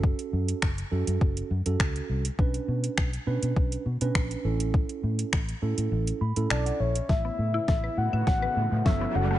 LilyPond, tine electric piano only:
\new Staff \with { instrumentName = "Tine electric piano" } { \time 4/4 \key a \mixolydian \tempo 4 = 102 << { r1 | r1 | r2 r8 b''8 a''16 fis''16 e''8 | r1 | } \\ { <cis' fis' a'>4 r8 <cis' fis' a'>4 r16 <cis' fis' a'>4 r16 | <cis' d' b'>4~ <cis' d' b'>16 r16 <cis' d' b'>4 r16 <cis' d' b'>8. <cis' e' a'>8~ | <cis' e' a'>4 r8 <cis' e' a'>4 r16 <cis' e' a'>4 r16 | r2. <b cis' a'>8 <cis' fis' a'>8 | } >> }